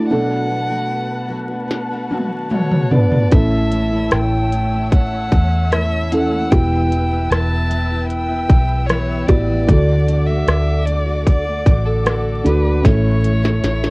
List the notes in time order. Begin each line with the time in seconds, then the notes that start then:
Already playing: A3 D4 E4 A5
0.09 B2 F#3 A3 B3 D4 F#4 A4 B4 F#5
0.49 F#3 A3 D4 F#4
0.70 B2 F#3 A3 D4 F#4
1.28 F#3 A3 D4 F#4
1.49 A3 D4 F#4
1.71 snare
1.90 A3 D4 F#4
2.10 F#3 A3 D4 F#4, high tom
2.50 B2 F#3 A3 D4 F#4 C#5, mid tom
2.71 mid tom
2.90 F#3 A3 B3 D4 F#4 B4 D5, floor tom
3.10 A3 D4 F#4, floor tom
3.30 A1 A2 E3 A3 C#4 E4 A4 C#5 E5 E6, kick, closed hi-hat
3.71 E3 A3 C#4 E4, closed hi-hat
3.91 A2 E3 A3 C#4 E4
4.11 A1 G5, cross-stick, closed hi-hat
4.51 E3 A3 C#4 E4, closed hi-hat
4.70 A3 C#4 E4
4.92 F#5, kick, closed hi-hat
5.10 A3 C#4 E4
5.30 E2 E3 A3 C#4 E4, kick, closed hi-hat
5.71 A2 E3 A3 C#4 E4 E5, cross-stick, closed hi-hat
6.11 E3 A3 C#4 E4 A4 F#5, closed hi-hat
6.30 A3 C#4 E4
6.50 E1 E2 B2 E3 G3 B3 E4 G4 B4 E5 G5, kick, closed hi-hat
6.90 E3 G3 B3 E4, closed hi-hat
7.11 E2 B2 E3 G3 B3 E4
7.31 E1 A5, cross-stick, closed hi-hat
7.70 E3 G3 B3 E4, closed hi-hat
7.89 E3 G3 B3 E4
8.09 G5, closed hi-hat
8.28 E3 G3 B3 E4
8.48 B1 E3 G3 B3 E4, kick, closed hi-hat
8.87 E2 B2 E3 G3 B3 E4 C#5, cross-stick, closed hi-hat
9.27 A1 E3 G3 B3 E4 G4 D5, kick, closed hi-hat
9.47 E3 G3 B3 E4
9.67 D2 D3 A3 D4 F#4 A4 D5 F#5 D6, kick, closed hi-hat
10.06 D3 A3 D4 F#4, closed hi-hat
10.26 D3 A3 D4 F#4 E5
10.47 D2, cross-stick, closed hi-hat
10.85 D3 A3 D4 F#4 D5, closed hi-hat
11.06 A3 D4 F#4
11.27 D5, kick, closed hi-hat
11.45 A3 D4 F#4
11.65 A1 D3 A3 D4 F#4, kick, closed hi-hat
11.85 A4
12.04 D3 A3 D4 F#4, cross-stick, closed hi-hat
12.44 D2 D3 A3 D4 F#4 A4 B4, closed hi-hat
12.63 A3 D4 F#4
12.83 A1 A2 E3 A3 C#4 E4 A4 C#5 E5 C#6, kick, snare, closed hi-hat
13.22 E3 A3 C#4 E4, closed hi-hat
13.43 A2 E3 A3 C#4 E4, snare
13.64 A1, snare, closed hi-hat
13.84 snare